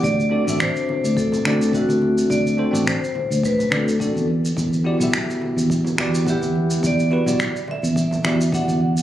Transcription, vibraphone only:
X:1
M:4/4
L:1/8
Q:"Swing 16ths" 1/4=106
K:Dmix
V:1 name="Vibraphone"
d2 c2 A A F2 | d2 c2 B A2 z | z6 G2 | d3 e3 f2 |]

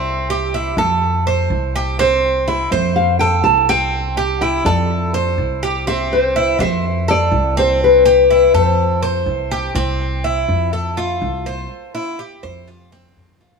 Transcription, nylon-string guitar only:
X:1
M:4/4
L:1/8
Q:1/4=124
K:C
V:1 name="Nylon-string guitar"
e2 z6 | c2 e2 f g a g- | g2 g d4 z | e c2 e2 d2 c |
B3 c3 z2 | z8 | z8 |]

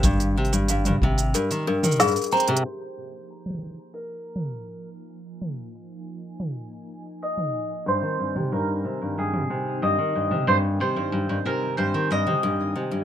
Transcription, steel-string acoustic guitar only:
X:1
M:4/4
L:1/16
Q:1/4=92
K:Ablyd
V:1 name="Steel-string acoustic guitar" clef=bass
G,,2 C, G,, G,, G,, C,2 G,, E, G,, E, G,, z C C, | z16 | z16 | G,, E, G,, C, G,,2 C, G,, G,, G,, C,2 G,, E, G,, C, |
G,,2 C, G,, G,, G,, C,2 G,, E, G,, C, G,,2 C, G,, |]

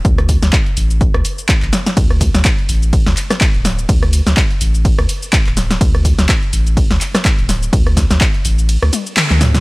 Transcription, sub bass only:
X:1
M:4/4
L:1/16
Q:"Swing 16ths" 1/4=125
K:Cdor
V:1 name="Sub bass" clef=bass
D,,3 D,, z2 A,,,3 D,, z3 A,,, z2 | D,,3 D,, z2 A,,,3 D,, z3 D,,,3 | D,,3 D,, z2 A,,,3 D,, z3 D,,,3 | D,,3 D,, z2 A,,,3 D,, z3 D,,,3 |
D,,3 D,, z2 A,,,3 D,, z3 D,,3 |]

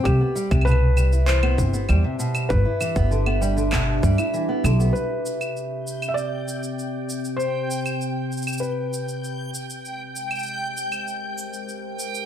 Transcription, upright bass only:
X:1
M:4/4
L:1/16
Q:1/4=98
K:C
V:1 name="Upright bass" clef=bass
C,, z2 C,,6- C,, G,,,2 E,, z3 | G,,, z2 G,,,6- G,,, G,, z3 B,,,2 | z16 | z16 |
z16 |]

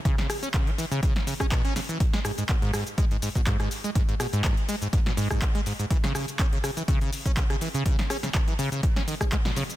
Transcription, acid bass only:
X:1
M:4/4
L:1/16
Q:"Swing 16ths" 1/4=123
K:C#dor
V:1 name="Acid bass" clef=bass
C, C, z C C, F, E, C, z2 C, C B,, C C, E, | z G, G,, G,, B,, G,, G,, z G, G,, G,, B,, G,, G,, z G, | G,, G,, B,, G,, z2 G, G,, G,, B,, G,, z2 G, G,, G,, | E, C, C, z C C, C, E, C, C, z C C, C, E, C, |
z2 C C, C, E, C, C, z C D, G, G, B,, C, z |]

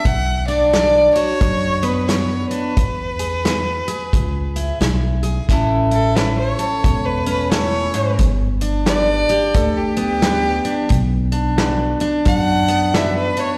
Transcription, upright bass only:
X:1
M:4/4
L:1/8
Q:"Swing" 1/4=88
K:A
V:1 name="Upright bass" clef=bass
B,,,4 F,,4 | E,,4 C,,2 B,,,2 | A,,,4 E,,,4 | =G,,,4 D,,4 |
B,,,4 F,,4 |]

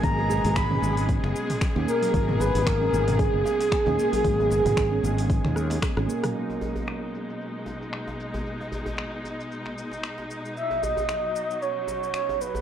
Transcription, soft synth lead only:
X:1
M:4/4
L:1/8
Q:"Swing 16ths" 1/4=114
K:G#m
V:1 name="Soft synth lead"
a2 b2 z3 A- | A B A2 G4- | G6 z2 | z8 |
z8 | e d3 c2 c B |]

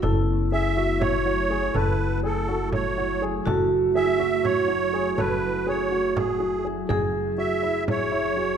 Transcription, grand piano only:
X:1
M:7/8
L:1/8
Q:1/4=122
K:F#m
V:1 name="Grand piano"
A2 G F2 F G | A2 G F2 F G | A2 G F2 F G | A2 G F2 F G |
G2 F E2 E F |]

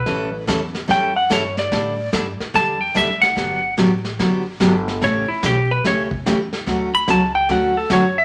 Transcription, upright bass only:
X:1
M:4/4
L:1/8
Q:"Swing" 1/4=145
K:Amix
V:1 name="Upright bass" clef=bass
A,,,2 E,,2 F,,2 G,,2 | A,,2 G,, z E,,2 D,,2 | G,,,2 A,,,2 F,,,2 G,,,2 | A,,, z B,,,2 C,,2 E,,2 |
D,,2 C,,2 D,,2 F,,2 |]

